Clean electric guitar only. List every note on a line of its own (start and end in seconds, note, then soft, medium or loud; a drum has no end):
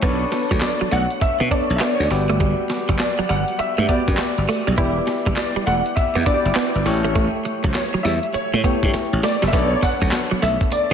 0.03 0.15 B3 medium
0.32 muted clean electric guitar stroke soft
0.51 0.58 F#3 medium
0.62 muted clean electric guitar stroke soft
0.81 0.88 F#3 medium
0.91 1.03 A3 medium
1.21 muted clean electric guitar stroke soft
1.40 1.47 B3 medium
1.51 1.63 D4 medium
1.81 1.93 B3 medium
2.11 muted clean electric guitar stroke soft
2.29 2.36 A3 medium
2.41 2.52 G3 medium
2.70 muted clean electric guitar stroke soft
2.89 2.96 F#3 medium
3.00 muted clean electric guitar stroke soft
3.19 3.25 F#3 medium
3.29 3.41 G3 medium
3.59 muted clean electric guitar stroke soft
3.78 3.85 A3 medium
3.89 4.01 B3 medium
4.19 muted clean electric guitar stroke soft
4.49 4.60 A3 medium
4.67 4.74 G3 medium
4.78 4.90 E4 medium
5.08 muted clean electric guitar stroke soft
5.27 5.34 G3 medium
5.37 muted clean electric guitar stroke soft
5.56 5.63 G3 medium
5.67 5.79 A3 medium
5.97 muted clean electric guitar stroke soft
6.15 6.22 B3 medium
6.26 6.38 D4 medium
6.56 6.68 B3 medium
6.86 muted clean electric guitar stroke soft
7.04 7.11 A3 medium
7.16 7.27 A3 medium
7.45 muted clean electric guitar stroke soft
7.64 7.71 F#3 medium
7.75 muted clean electric guitar stroke soft
7.94 8.01 F#3 medium
8.05 8.17 G3 medium
8.34 muted clean electric guitar stroke soft
8.54 8.60 A3 medium
8.64 8.76 B3 medium
8.94 muted clean electric guitar stroke medium
9.24 9.35 A3 medium
9.43 9.49 G3 medium
9.53 9.65 B3 medium
9.83 muted clean electric guitar stroke soft
10.02 10.08 F#3 medium
10.13 muted clean electric guitar stroke soft
10.31 10.38 F#3 medium
10.42 10.54 A3 medium
10.72 muted clean electric guitar stroke soft